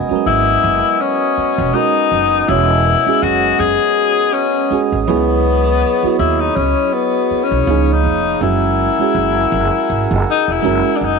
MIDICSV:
0, 0, Header, 1, 6, 480
1, 0, Start_track
1, 0, Tempo, 740741
1, 1607, Time_signature, 4, 2, 24, 8
1, 7252, End_track
2, 0, Start_track
2, 0, Title_t, "Accordion"
2, 0, Program_c, 0, 21
2, 0, Note_on_c, 0, 59, 80
2, 0, Note_on_c, 0, 75, 72
2, 0, Note_on_c, 0, 80, 69
2, 0, Note_on_c, 0, 87, 92
2, 3260, Note_off_c, 0, 59, 0
2, 3263, Note_off_c, 0, 80, 0
2, 3287, Note_on_c, 0, 73, 79
2, 3290, Note_on_c, 0, 83, 67
2, 4940, Note_off_c, 0, 75, 0
2, 4950, Note_off_c, 0, 73, 0
2, 4966, Note_on_c, 0, 73, 72
2, 4968, Note_on_c, 0, 77, 70
2, 5419, Note_off_c, 0, 87, 0
2, 5427, Note_off_c, 0, 83, 0
2, 5442, Note_off_c, 0, 73, 0
2, 5443, Note_off_c, 0, 77, 0
2, 5448, Note_on_c, 0, 70, 78
2, 5448, Note_on_c, 0, 80, 71
2, 5449, Note_on_c, 0, 78, 69
2, 5449, Note_on_c, 0, 88, 93
2, 7252, Note_off_c, 0, 70, 0
2, 7252, Note_off_c, 0, 78, 0
2, 7252, Note_off_c, 0, 80, 0
2, 7252, Note_off_c, 0, 88, 0
2, 7252, End_track
3, 0, Start_track
3, 0, Title_t, "Tenor saxophone"
3, 0, Program_c, 1, 66
3, 172, Note_on_c, 1, 64, 103
3, 651, Note_on_c, 1, 61, 93
3, 661, Note_off_c, 1, 64, 0
3, 1129, Note_on_c, 1, 63, 101
3, 1139, Note_off_c, 1, 61, 0
3, 1609, Note_on_c, 1, 64, 95
3, 1619, Note_off_c, 1, 63, 0
3, 2090, Note_on_c, 1, 66, 97
3, 2100, Note_off_c, 1, 64, 0
3, 2329, Note_on_c, 1, 68, 107
3, 2338, Note_off_c, 1, 66, 0
3, 2808, Note_on_c, 1, 61, 88
3, 2818, Note_off_c, 1, 68, 0
3, 3122, Note_off_c, 1, 61, 0
3, 3290, Note_on_c, 1, 59, 104
3, 3982, Note_off_c, 1, 59, 0
3, 4011, Note_on_c, 1, 64, 94
3, 4147, Note_on_c, 1, 63, 85
3, 4157, Note_off_c, 1, 64, 0
3, 4250, Note_on_c, 1, 61, 95
3, 4259, Note_off_c, 1, 63, 0
3, 4493, Note_on_c, 1, 59, 93
3, 4503, Note_off_c, 1, 61, 0
3, 4816, Note_on_c, 1, 61, 84
3, 4826, Note_off_c, 1, 59, 0
3, 5138, Note_on_c, 1, 63, 74
3, 5147, Note_off_c, 1, 61, 0
3, 5452, Note_off_c, 1, 63, 0
3, 5459, Note_on_c, 1, 64, 87
3, 6627, Note_off_c, 1, 64, 0
3, 6677, Note_on_c, 1, 63, 97
3, 6810, Note_on_c, 1, 64, 107
3, 6820, Note_off_c, 1, 63, 0
3, 7107, Note_on_c, 1, 62, 72
3, 7117, Note_off_c, 1, 64, 0
3, 7159, Note_on_c, 1, 63, 111
3, 7168, Note_off_c, 1, 62, 0
3, 7252, Note_off_c, 1, 63, 0
3, 7252, End_track
4, 0, Start_track
4, 0, Title_t, "FM electric piano"
4, 0, Program_c, 2, 5
4, 0, Control_c, 2, 64, 127
4, 0, Note_on_c, 2, 56, 70
4, 0, Note_on_c, 2, 61, 63
4, 0, Note_on_c, 2, 66, 63
4, 0, Note_on_c, 2, 70, 73
4, 58, Note_on_c, 2, 54, 60
4, 69, Note_off_c, 2, 61, 0
4, 69, Note_on_c, 2, 61, 65
4, 74, Note_off_c, 2, 66, 0
4, 74, Note_on_c, 2, 66, 64
4, 82, Note_off_c, 2, 70, 0
4, 82, Note_on_c, 2, 70, 77
4, 97, Note_off_c, 2, 54, 0
4, 101, Note_off_c, 2, 56, 0
4, 101, Note_on_c, 2, 56, 76
4, 859, Note_off_c, 2, 61, 0
4, 861, Note_off_c, 2, 66, 0
4, 865, Note_off_c, 2, 70, 0
4, 875, Note_off_c, 2, 56, 0
4, 1121, Note_on_c, 2, 56, 74
4, 1129, Note_on_c, 2, 61, 66
4, 1135, Note_on_c, 2, 66, 70
4, 1143, Note_on_c, 2, 70, 81
4, 1537, Note_off_c, 2, 56, 0
4, 1541, Note_off_c, 2, 61, 0
4, 1544, Note_off_c, 2, 66, 0
4, 1548, Note_off_c, 2, 70, 0
4, 1606, Note_on_c, 2, 56, 70
4, 1611, Note_on_c, 2, 61, 61
4, 1618, Note_on_c, 2, 66, 67
4, 1627, Note_on_c, 2, 73, 80
4, 1917, Note_off_c, 2, 56, 0
4, 1919, Note_off_c, 2, 61, 0
4, 1923, Note_off_c, 2, 66, 0
4, 1927, Note_off_c, 2, 73, 0
4, 1983, Note_on_c, 2, 56, 72
4, 1989, Note_on_c, 2, 61, 72
4, 1996, Note_on_c, 2, 66, 63
4, 2004, Note_on_c, 2, 68, 78
4, 2776, Note_off_c, 2, 56, 0
4, 2779, Note_off_c, 2, 61, 0
4, 2782, Note_off_c, 2, 66, 0
4, 2786, Note_off_c, 2, 68, 0
4, 3048, Note_on_c, 2, 56, 74
4, 3057, Note_on_c, 2, 61, 70
4, 3063, Note_on_c, 2, 66, 64
4, 3073, Note_on_c, 2, 68, 83
4, 3286, Note_on_c, 2, 54, 86
4, 3288, Note_off_c, 2, 56, 0
4, 3291, Note_on_c, 2, 59, 75
4, 3292, Note_off_c, 2, 61, 0
4, 3294, Control_c, 2, 64, 0
4, 3295, Note_off_c, 2, 66, 0
4, 3297, Note_off_c, 2, 68, 0
4, 3298, Note_on_c, 2, 64, 68
4, 3305, Note_on_c, 2, 68, 93
4, 3420, Control_c, 2, 64, 127
4, 3792, Note_off_c, 2, 54, 0
4, 3795, Note_off_c, 2, 59, 0
4, 3798, Note_off_c, 2, 64, 0
4, 3802, Note_off_c, 2, 68, 0
4, 3906, Note_on_c, 2, 54, 70
4, 3914, Note_on_c, 2, 59, 68
4, 3920, Note_on_c, 2, 64, 67
4, 3927, Note_on_c, 2, 66, 82
4, 4697, Note_off_c, 2, 54, 0
4, 4701, Note_off_c, 2, 59, 0
4, 4704, Note_off_c, 2, 64, 0
4, 4708, Note_off_c, 2, 66, 0
4, 4971, Note_on_c, 2, 53, 76
4, 4976, Control_c, 2, 64, 0
4, 4977, Note_on_c, 2, 58, 70
4, 4987, Note_on_c, 2, 63, 73
4, 4991, Note_on_c, 2, 68, 80
4, 5093, Control_c, 2, 64, 127
4, 5382, Note_off_c, 2, 53, 0
4, 5385, Note_off_c, 2, 58, 0
4, 5390, Note_off_c, 2, 63, 0
4, 5392, Note_off_c, 2, 68, 0
4, 5447, Note_on_c, 2, 56, 69
4, 5454, Control_c, 2, 64, 0
4, 5457, Note_on_c, 2, 61, 65
4, 5466, Note_on_c, 2, 66, 62
4, 5471, Note_on_c, 2, 70, 73
4, 5574, Control_c, 2, 64, 127
4, 5758, Note_off_c, 2, 56, 0
4, 5762, Note_off_c, 2, 61, 0
4, 5767, Note_off_c, 2, 66, 0
4, 5769, Note_off_c, 2, 70, 0
4, 5830, Note_on_c, 2, 56, 78
4, 5837, Note_on_c, 2, 61, 66
4, 5841, Note_on_c, 2, 66, 70
4, 5849, Note_on_c, 2, 68, 83
4, 6619, Note_off_c, 2, 56, 0
4, 6622, Note_off_c, 2, 61, 0
4, 6625, Note_off_c, 2, 66, 0
4, 6629, Note_off_c, 2, 68, 0
4, 6885, Note_on_c, 2, 56, 90
4, 6895, Note_on_c, 2, 61, 77
4, 6900, Note_on_c, 2, 66, 81
4, 6908, Note_on_c, 2, 70, 95
4, 7252, Note_off_c, 2, 56, 0
4, 7252, Note_off_c, 2, 61, 0
4, 7252, Note_off_c, 2, 66, 0
4, 7252, Note_off_c, 2, 70, 0
4, 7252, End_track
5, 0, Start_track
5, 0, Title_t, "Upright bass"
5, 0, Program_c, 3, 32
5, 170, Note_on_c, 3, 32, 88
5, 356, Note_off_c, 3, 32, 0
5, 413, Note_on_c, 3, 30, 98
5, 518, Note_off_c, 3, 30, 0
5, 1026, Note_on_c, 3, 28, 96
5, 1105, Note_off_c, 3, 28, 0
5, 1371, Note_on_c, 3, 30, 83
5, 1557, Note_off_c, 3, 30, 0
5, 1610, Note_on_c, 3, 28, 108
5, 1904, Note_off_c, 3, 28, 0
5, 2091, Note_on_c, 3, 30, 87
5, 2277, Note_off_c, 3, 30, 0
5, 2330, Note_on_c, 3, 30, 85
5, 2436, Note_off_c, 3, 30, 0
5, 3190, Note_on_c, 3, 32, 82
5, 3268, Note_off_c, 3, 32, 0
5, 3291, Note_on_c, 3, 37, 96
5, 3772, Note_off_c, 3, 37, 0
5, 4014, Note_on_c, 3, 39, 96
5, 4199, Note_off_c, 3, 39, 0
5, 4254, Note_on_c, 3, 37, 88
5, 4359, Note_off_c, 3, 37, 0
5, 4869, Note_on_c, 3, 35, 89
5, 4947, Note_off_c, 3, 35, 0
5, 4972, Note_on_c, 3, 37, 101
5, 5210, Note_on_c, 3, 29, 82
5, 5219, Note_off_c, 3, 37, 0
5, 5396, Note_off_c, 3, 29, 0
5, 5450, Note_on_c, 3, 30, 101
5, 5744, Note_off_c, 3, 30, 0
5, 5928, Note_on_c, 3, 30, 91
5, 6115, Note_off_c, 3, 30, 0
5, 6169, Note_on_c, 3, 30, 95
5, 6276, Note_off_c, 3, 30, 0
5, 6414, Note_on_c, 3, 32, 89
5, 6519, Note_off_c, 3, 32, 0
5, 6550, Note_on_c, 3, 30, 93
5, 6628, Note_off_c, 3, 30, 0
5, 6791, Note_on_c, 3, 28, 78
5, 6869, Note_off_c, 3, 28, 0
5, 6894, Note_on_c, 3, 30, 85
5, 6999, Note_off_c, 3, 30, 0
5, 7136, Note_on_c, 3, 30, 82
5, 7240, Note_off_c, 3, 30, 0
5, 7252, End_track
6, 0, Start_track
6, 0, Title_t, "Muted upright bass strokes"
6, 69, Note_on_c, 9, 29, 45
6, 134, Note_off_c, 9, 29, 0
6, 892, Note_on_c, 9, 29, 46
6, 957, Note_off_c, 9, 29, 0
6, 1988, Note_on_c, 9, 29, 49
6, 2053, Note_off_c, 9, 29, 0
6, 3053, Note_on_c, 9, 29, 44
6, 3118, Note_off_c, 9, 29, 0
6, 3913, Note_on_c, 9, 29, 49
6, 3977, Note_off_c, 9, 29, 0
6, 4738, Note_on_c, 9, 29, 45
6, 4802, Note_off_c, 9, 29, 0
6, 5825, Note_on_c, 9, 29, 48
6, 5889, Note_off_c, 9, 29, 0
6, 7252, End_track
0, 0, End_of_file